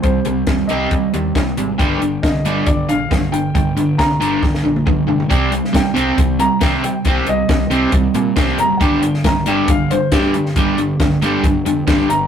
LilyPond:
<<
  \new Staff \with { instrumentName = "Upright piano" } { \time 4/4 \key c \minor \tempo 4 = 137 c''4. ees''4 r4. | g''4 ees''4 d''8 f''4 g''8 | g''4 bes''8 bes''2 r8 | r4 g''4. bes''4 g''8~ |
g''8 ees''2 r4 bes''8 | <fis'' g''>4 bes''8 g''8 f''8 c''8 g'4~ | g'2 r4. bes''8 | }
  \new Staff \with { instrumentName = "Overdriven electric guitar" } { \clef bass \time 4/4 \key c \minor <c g>8 <c g>8 <c g>8 <c g c'>8 <c g>8 <c g>8 <c g>8 <c g>8 | <g, d g>8 <g, d>8 <g, d>8 <g, d g>8 <g, d>8 <g, d>8 <g, d>8 <g, d>8 | <g, d>8 <g, d>8 <g, d>8 <g, d g>8 <g, d>8 <g, d>8 <g, d>8 <g, d>8 | <c g c'>8 <c g>8 <c g>8 <c g c'>8 <c g>8 <c g>8 <c g c'>8 <c g>8 |
<c g c'>8 <c g>8 <c g>8 <c g c'>8 <c g>8 <c g>8 <c g c'>8 <c g>8 | <g, d g>8 <g, d>8 <g, d>8 <g, d g>8 <g, d>8 <g, d>8 <g, d g>8 <g, d>8 | <g, d g>8 <g, d>8 <g, d>8 <g, d g>8 <g, d>8 <g, d>8 <g, d g>8 <g, d>8 | }
  \new Staff \with { instrumentName = "Fingered electric bass" } { \clef bass \time 4/4 \key c \minor c,8 c,8 f,8 c,8 c,8 ees,8 c,8 aes,,8 | g,,8 g,,8 c,8 g,,8 g,,8 bes,,8 g,,8 g,,8 | g,,8 g,,8 c,8 g,,8 g,,8 bes,,8 g,,8 g,,8 | c,4 c,8 c,8 c,4 c4 |
c,8 c,8 c,8 c,8 c,8 bes,8 c,8 fis,,8 | g,,4 g,,8 g,,8 g,,4 g,4 | g,,8 g,,8 g,,8 g,,8 g,,8 f,8 g,,8 g,,8 | }
  \new DrumStaff \with { instrumentName = "Drums" } \drummode { \time 4/4 <hh bd>8 hh8 <hh bd sn>8 hh8 <hh bd>8 hh8 <hh bd sn>8 hh8 | <hh bd>8 hh8 <hh bd sn>8 hh8 <hh bd>8 hh8 <hh bd sn>8 hh8 | <hh bd>8 hh8 <hh bd sn>8 hh8 <bd sn>16 sn8 tommh16 <bd toml>8 tomfh16 tomfh16 | <hh bd>8 hh16 sn16 <hh bd sn>8 hh8 <hh bd>8 hh8 <hh bd sn>8 hh8 |
<hh bd>8 hh8 <hh bd sn>8 hh8 <hh bd>8 hh8 <hh bd sn>8 hh8 | <hh bd>8 hh16 sn16 <hh bd sn>8 hh8 <hh bd>8 hh8 <hh bd sn>8 hh16 sn16 | <hh bd>8 hh8 <hh bd sn>8 hh8 <hh bd>8 hh8 <hh bd sn>8 hh8 | }
>>